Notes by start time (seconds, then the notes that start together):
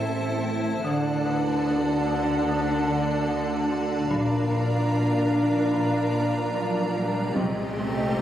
Already playing: A1 A2 C4 E4 A4 C5 E5 A5
0.02 A2
0.43 A3
0.81 D2 D3 D4 F#4 A4 D5 F#5 A5
1.25 D3 B4
1.66 D3
2.07 D3
2.48 D3
2.89 D3
3.30 D3
3.71 D4
4.09 A#1 A#2 D4 F4 A#4 D5 F5 A#5, taiko, riser
4.51 A#2
4.91 A#2
5.31 A#2
5.71 A#2
6.11 A#2
6.54 A#2 A#4
6.95 A#3
7.35 C2 C3 C4 G4 D#5 C6, taiko
7.78 C3